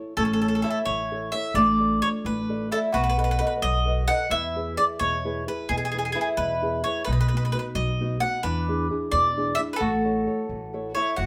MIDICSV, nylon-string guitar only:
0, 0, Header, 1, 2, 480
1, 0, Start_track
1, 0, Key_signature, 3, "major"
1, 0, Tempo, 459067
1, 179, Time_signature, 6, 3, 24, 8
1, 11776, End_track
2, 0, Start_track
2, 0, Title_t, "Nylon-string guitar"
2, 0, Program_c, 0, 24
2, 0, Note_on_c, 0, 64, 39
2, 0, Note_on_c, 0, 69, 37
2, 0, Note_on_c, 0, 73, 39
2, 129, Note_off_c, 0, 69, 0
2, 134, Note_off_c, 0, 64, 0
2, 137, Note_off_c, 0, 73, 0
2, 191, Note_on_c, 0, 57, 63
2, 428, Note_on_c, 0, 64, 42
2, 428, Note_on_c, 0, 69, 35
2, 435, Note_on_c, 0, 73, 45
2, 651, Note_off_c, 0, 64, 0
2, 654, Note_off_c, 0, 69, 0
2, 662, Note_on_c, 0, 64, 43
2, 666, Note_off_c, 0, 57, 0
2, 666, Note_off_c, 0, 73, 0
2, 670, Note_on_c, 0, 69, 42
2, 679, Note_on_c, 0, 73, 52
2, 898, Note_on_c, 0, 52, 59
2, 1060, Note_off_c, 0, 64, 0
2, 1062, Note_off_c, 0, 69, 0
2, 1069, Note_off_c, 0, 73, 0
2, 1164, Note_on_c, 0, 64, 45
2, 1169, Note_on_c, 0, 69, 42
2, 1171, Note_on_c, 0, 73, 55
2, 1378, Note_off_c, 0, 52, 0
2, 1391, Note_off_c, 0, 64, 0
2, 1392, Note_off_c, 0, 73, 0
2, 1395, Note_off_c, 0, 69, 0
2, 1402, Note_on_c, 0, 64, 52
2, 1406, Note_on_c, 0, 73, 48
2, 1408, Note_on_c, 0, 69, 39
2, 1587, Note_off_c, 0, 64, 0
2, 1588, Note_off_c, 0, 73, 0
2, 1590, Note_off_c, 0, 69, 0
2, 1632, Note_on_c, 0, 57, 67
2, 1875, Note_on_c, 0, 65, 44
2, 1880, Note_on_c, 0, 69, 38
2, 1885, Note_on_c, 0, 74, 45
2, 2101, Note_off_c, 0, 65, 0
2, 2104, Note_off_c, 0, 69, 0
2, 2105, Note_off_c, 0, 57, 0
2, 2106, Note_off_c, 0, 74, 0
2, 2113, Note_on_c, 0, 65, 48
2, 2118, Note_on_c, 0, 69, 48
2, 2119, Note_on_c, 0, 74, 51
2, 2344, Note_on_c, 0, 57, 66
2, 2506, Note_off_c, 0, 65, 0
2, 2508, Note_off_c, 0, 69, 0
2, 2509, Note_off_c, 0, 74, 0
2, 2603, Note_on_c, 0, 65, 49
2, 2608, Note_on_c, 0, 69, 53
2, 2614, Note_on_c, 0, 74, 61
2, 2821, Note_off_c, 0, 57, 0
2, 2833, Note_off_c, 0, 69, 0
2, 2835, Note_off_c, 0, 65, 0
2, 2842, Note_off_c, 0, 74, 0
2, 2847, Note_on_c, 0, 65, 44
2, 2847, Note_on_c, 0, 69, 41
2, 2854, Note_on_c, 0, 74, 55
2, 3028, Note_off_c, 0, 69, 0
2, 3029, Note_off_c, 0, 65, 0
2, 3033, Note_off_c, 0, 74, 0
2, 3070, Note_on_c, 0, 59, 69
2, 3322, Note_on_c, 0, 69, 48
2, 3330, Note_on_c, 0, 71, 36
2, 3334, Note_on_c, 0, 75, 53
2, 3540, Note_off_c, 0, 59, 0
2, 3540, Note_off_c, 0, 69, 0
2, 3544, Note_off_c, 0, 71, 0
2, 3548, Note_off_c, 0, 75, 0
2, 3552, Note_on_c, 0, 69, 49
2, 3556, Note_on_c, 0, 71, 43
2, 3563, Note_on_c, 0, 75, 59
2, 3778, Note_on_c, 0, 54, 64
2, 3941, Note_off_c, 0, 69, 0
2, 3944, Note_off_c, 0, 71, 0
2, 3946, Note_off_c, 0, 75, 0
2, 4030, Note_on_c, 0, 69, 54
2, 4041, Note_on_c, 0, 71, 46
2, 4047, Note_on_c, 0, 75, 59
2, 4249, Note_off_c, 0, 69, 0
2, 4252, Note_off_c, 0, 54, 0
2, 4258, Note_off_c, 0, 71, 0
2, 4261, Note_off_c, 0, 75, 0
2, 4261, Note_on_c, 0, 69, 43
2, 4269, Note_on_c, 0, 71, 49
2, 4276, Note_on_c, 0, 75, 58
2, 4450, Note_off_c, 0, 69, 0
2, 4455, Note_off_c, 0, 71, 0
2, 4458, Note_off_c, 0, 75, 0
2, 4490, Note_on_c, 0, 52, 67
2, 4763, Note_on_c, 0, 64, 41
2, 4768, Note_on_c, 0, 68, 38
2, 4774, Note_on_c, 0, 71, 49
2, 4969, Note_off_c, 0, 52, 0
2, 4984, Note_off_c, 0, 64, 0
2, 4984, Note_off_c, 0, 68, 0
2, 4990, Note_off_c, 0, 71, 0
2, 4995, Note_on_c, 0, 68, 39
2, 4999, Note_on_c, 0, 64, 46
2, 5002, Note_on_c, 0, 71, 47
2, 5226, Note_on_c, 0, 47, 56
2, 5387, Note_off_c, 0, 64, 0
2, 5387, Note_off_c, 0, 68, 0
2, 5390, Note_off_c, 0, 71, 0
2, 5484, Note_on_c, 0, 64, 43
2, 5489, Note_on_c, 0, 68, 44
2, 5493, Note_on_c, 0, 71, 55
2, 5702, Note_off_c, 0, 47, 0
2, 5708, Note_off_c, 0, 64, 0
2, 5712, Note_off_c, 0, 71, 0
2, 5713, Note_off_c, 0, 68, 0
2, 5719, Note_on_c, 0, 64, 47
2, 5725, Note_on_c, 0, 68, 45
2, 5728, Note_on_c, 0, 71, 44
2, 5954, Note_on_c, 0, 47, 64
2, 6112, Note_off_c, 0, 64, 0
2, 6114, Note_off_c, 0, 68, 0
2, 6114, Note_off_c, 0, 71, 0
2, 6206, Note_on_c, 0, 64, 43
2, 6211, Note_on_c, 0, 68, 42
2, 6215, Note_on_c, 0, 71, 43
2, 6416, Note_off_c, 0, 64, 0
2, 6417, Note_off_c, 0, 68, 0
2, 6423, Note_off_c, 0, 71, 0
2, 6428, Note_off_c, 0, 47, 0
2, 6428, Note_on_c, 0, 64, 46
2, 6432, Note_on_c, 0, 68, 39
2, 6436, Note_on_c, 0, 71, 52
2, 6668, Note_on_c, 0, 47, 68
2, 6825, Note_off_c, 0, 64, 0
2, 6825, Note_off_c, 0, 68, 0
2, 6829, Note_off_c, 0, 71, 0
2, 6922, Note_on_c, 0, 64, 47
2, 6929, Note_on_c, 0, 68, 47
2, 6937, Note_on_c, 0, 71, 54
2, 7142, Note_off_c, 0, 64, 0
2, 7144, Note_off_c, 0, 47, 0
2, 7146, Note_off_c, 0, 68, 0
2, 7154, Note_on_c, 0, 64, 41
2, 7157, Note_off_c, 0, 71, 0
2, 7160, Note_on_c, 0, 68, 38
2, 7169, Note_on_c, 0, 71, 44
2, 7342, Note_off_c, 0, 64, 0
2, 7344, Note_off_c, 0, 68, 0
2, 7350, Note_off_c, 0, 71, 0
2, 7401, Note_on_c, 0, 47, 70
2, 7662, Note_on_c, 0, 59, 46
2, 7667, Note_on_c, 0, 63, 40
2, 7672, Note_on_c, 0, 66, 51
2, 7857, Note_off_c, 0, 59, 0
2, 7860, Note_off_c, 0, 63, 0
2, 7865, Note_off_c, 0, 47, 0
2, 7870, Note_on_c, 0, 59, 45
2, 7871, Note_off_c, 0, 66, 0
2, 7874, Note_on_c, 0, 63, 42
2, 7884, Note_on_c, 0, 66, 47
2, 8101, Note_on_c, 0, 54, 68
2, 8259, Note_off_c, 0, 59, 0
2, 8260, Note_off_c, 0, 63, 0
2, 8267, Note_off_c, 0, 66, 0
2, 8368, Note_on_c, 0, 59, 59
2, 8373, Note_on_c, 0, 63, 50
2, 8376, Note_on_c, 0, 66, 54
2, 8572, Note_off_c, 0, 54, 0
2, 8574, Note_off_c, 0, 59, 0
2, 8576, Note_off_c, 0, 63, 0
2, 8580, Note_off_c, 0, 66, 0
2, 8585, Note_on_c, 0, 59, 43
2, 8590, Note_on_c, 0, 63, 40
2, 8593, Note_on_c, 0, 66, 51
2, 8772, Note_off_c, 0, 59, 0
2, 8773, Note_off_c, 0, 63, 0
2, 8776, Note_off_c, 0, 66, 0
2, 8838, Note_on_c, 0, 52, 74
2, 9076, Note_on_c, 0, 62, 47
2, 9081, Note_on_c, 0, 64, 42
2, 9085, Note_on_c, 0, 68, 43
2, 9293, Note_off_c, 0, 62, 0
2, 9299, Note_off_c, 0, 52, 0
2, 9299, Note_off_c, 0, 64, 0
2, 9300, Note_off_c, 0, 68, 0
2, 9305, Note_on_c, 0, 62, 44
2, 9312, Note_on_c, 0, 68, 53
2, 9313, Note_on_c, 0, 64, 42
2, 9536, Note_on_c, 0, 47, 54
2, 9692, Note_off_c, 0, 62, 0
2, 9696, Note_off_c, 0, 64, 0
2, 9696, Note_off_c, 0, 68, 0
2, 9788, Note_on_c, 0, 62, 50
2, 9793, Note_on_c, 0, 64, 54
2, 9803, Note_on_c, 0, 68, 60
2, 10001, Note_off_c, 0, 62, 0
2, 10006, Note_off_c, 0, 47, 0
2, 10011, Note_off_c, 0, 64, 0
2, 10013, Note_off_c, 0, 68, 0
2, 10014, Note_on_c, 0, 62, 46
2, 10024, Note_on_c, 0, 64, 37
2, 10025, Note_on_c, 0, 68, 49
2, 10202, Note_off_c, 0, 62, 0
2, 10207, Note_off_c, 0, 64, 0
2, 10209, Note_off_c, 0, 68, 0
2, 10251, Note_on_c, 0, 57, 64
2, 10500, Note_on_c, 0, 64, 37
2, 10504, Note_on_c, 0, 69, 40
2, 10511, Note_on_c, 0, 73, 43
2, 10718, Note_off_c, 0, 64, 0
2, 10724, Note_off_c, 0, 73, 0
2, 10726, Note_off_c, 0, 57, 0
2, 10728, Note_off_c, 0, 69, 0
2, 10731, Note_on_c, 0, 64, 42
2, 10739, Note_on_c, 0, 69, 43
2, 10740, Note_on_c, 0, 73, 47
2, 10971, Note_on_c, 0, 52, 56
2, 11127, Note_off_c, 0, 64, 0
2, 11131, Note_off_c, 0, 73, 0
2, 11133, Note_off_c, 0, 69, 0
2, 11223, Note_on_c, 0, 64, 54
2, 11228, Note_on_c, 0, 69, 41
2, 11233, Note_on_c, 0, 73, 57
2, 11447, Note_off_c, 0, 64, 0
2, 11448, Note_off_c, 0, 52, 0
2, 11451, Note_off_c, 0, 69, 0
2, 11459, Note_on_c, 0, 64, 43
2, 11460, Note_off_c, 0, 73, 0
2, 11464, Note_on_c, 0, 69, 44
2, 11472, Note_on_c, 0, 73, 45
2, 11648, Note_off_c, 0, 64, 0
2, 11651, Note_off_c, 0, 69, 0
2, 11656, Note_off_c, 0, 73, 0
2, 11708, Note_on_c, 0, 54, 56
2, 11776, Note_off_c, 0, 54, 0
2, 11776, End_track
0, 0, End_of_file